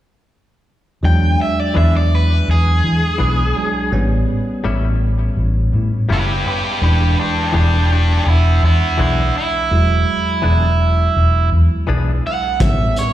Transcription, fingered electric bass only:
1.03 E2
1.76 E2
2.48 E2
2.84 E3
3.20 B1
3.92 A1
4.65 A1
5.37 A1
5.74 A2
6.10 F#1
6.82 E1
7.54 E1
8.26 E1
8.63 E2
8.99 B1
9.71 E1
10.44 E1
11.16 E1
11.52 E2
11.88 B1
12.60 A1

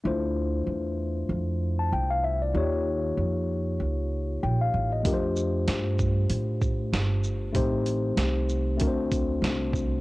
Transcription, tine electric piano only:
0.04 A3 D4 E4 F4 C5
1.79 A5
1.93 G5
2.10 F5
2.24 E5
2.42 D5
2.54 A#3 D#4 F4 G4 C#5
4.43 G5
4.61 F5
4.92 D#5
5.03 A3 D4 F4 G4 A#4
5.13 C5
7.53 A3 C4 D#4 G4 C5
8.77 A3 C4 D4 F#4 A#4
8.88 C5

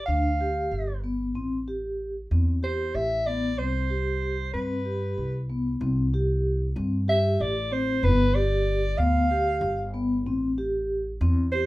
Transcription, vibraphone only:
0.08 D4
0.41 G4
1.04 B3
1.35 C4
1.68 G4
2.31 C4
2.63 G4
3.27 B3
3.59 C4
3.90 G4
4.54 C4
4.85 G4
5.50 B3
5.81 C4
6.14 G4
6.76 C4
7.08 G4
7.71 C4
8.03 B3
8.35 G4
8.99 B3
9.31 G4
9.94 B3
10.26 C4
10.58 G4
11.22 C4
11.54 G4

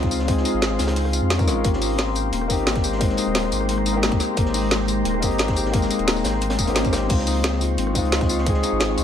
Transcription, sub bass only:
Already playing: C#2
0.54 G#1
0.79 C#2
1.22 F2
1.47 G#1
1.64 G#1
2.33 D#1
2.50 G#1
3.27 D#1
3.52 G#1
4.37 G#1
5.05 D#1
5.23 G#1
5.99 D#1
6.25 G#1
6.59 D#1
6.67 G#1
7.10 C#2
7.78 G#1
7.95 C#2
8.72 G#1
8.98 C#2

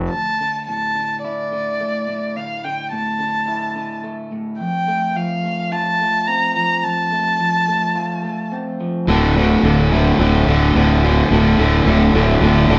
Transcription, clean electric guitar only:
Already playing: F3 A3 C4 F4
0.13 D2
0.41 D3
0.68 A2
0.96 D3
1.25 E4
1.52 D3
1.81 A3
2.09 A2
2.37 D2
2.65 D3
2.92 A2
3.20 D3
3.48 E4
3.76 D3
4.04 A3
4.32 A2
4.60 F2
4.88 A3
5.16 F3
5.45 A3
5.72 F4
6.00 A3
6.28 C4
6.56 F3
6.84 F2
7.12 A3
7.40 F3
7.68 A3
7.95 F4
8.24 A3
8.52 C4
8.80 F3
9.08 D2
9.36 A2
9.63 A3
9.91 E4
10.20 D3
10.47 A2
10.75 D3
11.03 A2
11.31 D2
11.58 A2
11.86 A3
12.13 E4
12.41 D3
12.69 A2

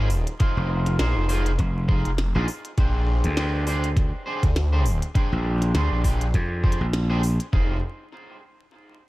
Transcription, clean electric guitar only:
0.40 D#4 F4 G#4 C5
0.99 D#4 F4 G#4 C5
1.29 D#4 F4 G#4 C5
1.88 D#4 F4 G#4 C5
2.35 D#4 F4 G#4 C5
2.78 D4 G4 G#4 C5
3.37 D4 G4 G#4 C5
3.67 D4 G4 G#4 C5
4.26 D4 G4 G#4 C5
4.73 D4 G4 G#4 C5
5.15 D4 G4 G#4 C5
5.74 D4 G4 G#4 C5
6.04 D4 G4 G#4 C5
6.64 D4 G4 G#4 C5
7.10 D4 G4 G#4 C5
7.53 D#4 F4 G#4 C5

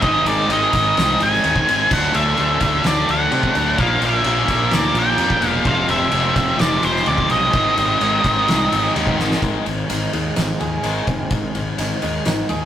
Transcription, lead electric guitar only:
0.03 D#5
0.28 D5
0.52 D#5
1.23 G#5
1.93 F#5
2.15 E5
2.87 D5
3.11 F#5
3.80 F5
4.05 E5
4.75 D5
4.98 G5
5.47 F5
5.68 F5
5.91 E5
6.60 D5
6.84 C5
7.07 D5
7.31 D#5

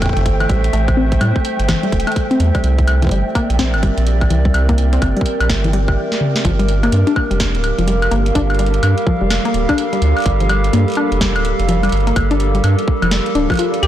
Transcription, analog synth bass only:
Already playing: E1
0.17 G1
0.50 A1
0.73 A1
1.21 A2
1.59 G1
1.92 E1
2.40 E2
2.64 C2
3.11 G1
3.50 A#1
3.74 G1
3.98 A#1
4.31 C2
4.54 C2
5.02 G1
5.40 A#1
5.49 G1
6.45 G1
6.92 G2
7.31 F1
7.55 D1
7.79 F1
8.11 G1
8.35 G1
8.83 G2
9.21 F1
9.54 D1
10.02 D2
10.26 G1
10.73 G2
11.12 F1
11.36 D1
11.60 F1
11.92 G1
12.16 G1
12.64 G2
13.02 F1
13.35 D1
13.83 D2

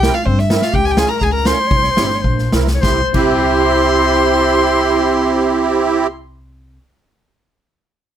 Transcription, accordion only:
0.03 C4 E4 A#4
0.50 C4 E4 A#4
0.97 C#4 F4 G#4
1.45 C#4 F4 A#4
1.97 C4 E4 G4
2.52 C4 E4 A#4
2.83 C4 E4 G4
3.14 C4 E4 G4

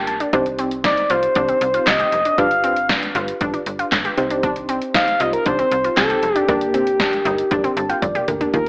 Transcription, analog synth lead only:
0.85 D5
1.10 C5
1.87 D#5
2.38 F5
4.95 F5
5.20 D#5
5.33 A#4
5.46 C5
5.97 A4
6.35 G4
6.48 G4
8.54 A#4

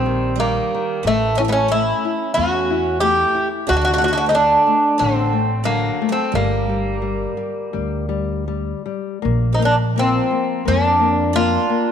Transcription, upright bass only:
Already playing: A#1
1.05 A1
2.38 E2
3.70 D2
5.01 A1
6.34 G1
7.74 D2
9.25 A#1
10.67 F2

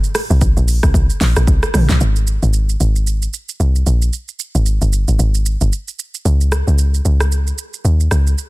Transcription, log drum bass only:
0.30 C2
0.57 A#1
0.83 C2
0.94 C2
1.21 A#1
1.37 A#1
1.48 C2
1.74 A#1
1.90 C2
2.01 G#1
2.43 G#1
2.80 G#1
3.60 C2
3.86 A#1
4.55 G#1
4.82 G1
5.08 G#1
5.19 G#1
5.61 G1
6.25 C#2
6.67 C#2
7.05 C#2
7.85 D#2
8.11 C#2

